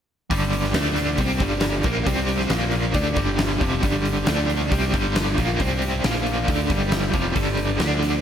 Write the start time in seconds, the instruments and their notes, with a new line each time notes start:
0.30 fingered electric bass G1, overdriven electric guitar G2 D3 G3, kick, open hi-hat
0.53 open hi-hat
0.65 snare
0.74 fingered electric bass D2, overdriven electric guitar D3 A3 D4, snare, open hi-hat
0.96 snare, open hi-hat
1.18 fingered electric bass C2, overdriven electric guitar C3 G3 C4, kick, open hi-hat
1.40 fingered electric bass G1, overdriven electric guitar G2 D3 G3, kick, open hi-hat
1.61 snare, open hi-hat
1.83 fingered electric bass A#1, overdriven electric guitar A#2 F3 A#3, kick, open hi-hat
2.06 fingered electric bass C2, overdriven electric guitar C3 G3 C4, kick, open hi-hat
2.29 open hi-hat
2.40 snare
2.50 fingered electric bass A#1, overdriven electric guitar A#2 F3 A#3, snare, open hi-hat
2.72 open hi-hat
2.94 fingered electric bass D2, overdriven electric guitar D3 A3 D4, kick, open hi-hat
3.16 fingered electric bass G1, overdriven electric guitar G2 D3 G3, kick, open hi-hat
3.39 snare, open hi-hat
3.61 fingered electric bass F1, overdriven electric guitar F2 C3 F3, kick, open hi-hat
3.83 fingered electric bass G1, overdriven electric guitar G2 D3 G3, kick, open hi-hat
4.05 open hi-hat
4.27 fingered electric bass D2, overdriven electric guitar D3 A3 D4, snare, open hi-hat
4.50 open hi-hat
4.72 fingered electric bass C2, overdriven electric guitar C3 G3 C4, kick, open hi-hat
4.94 fingered electric bass G1, overdriven electric guitar G2 D3 G3, kick, open hi-hat
5.16 snare, open hi-hat
5.38 fingered electric bass A#1, overdriven electric guitar A#2 F3 A#3, kick, open hi-hat
5.60 fingered electric bass C2, overdriven electric guitar C3 G3 C4, kick, open hi-hat
5.82 open hi-hat
6.04 fingered electric bass A#1, overdriven electric guitar A#2 F3 A#3, snare, open hi-hat
6.27 open hi-hat
6.48 fingered electric bass D2, overdriven electric guitar D3 A3 D4, kick, open hi-hat
6.70 fingered electric bass G1, overdriven electric guitar G2 D3 G3, kick, open hi-hat
6.92 snare, open hi-hat
7.13 fingered electric bass F1, overdriven electric guitar F2 C3 F3, kick, open hi-hat
7.35 fingered electric bass G1, overdriven electric guitar G2 D3 G3, kick, open hi-hat
7.57 open hi-hat
7.79 fingered electric bass D2, overdriven electric guitar D3 A3 D4, snare, open hi-hat
8.02 snare, open hi-hat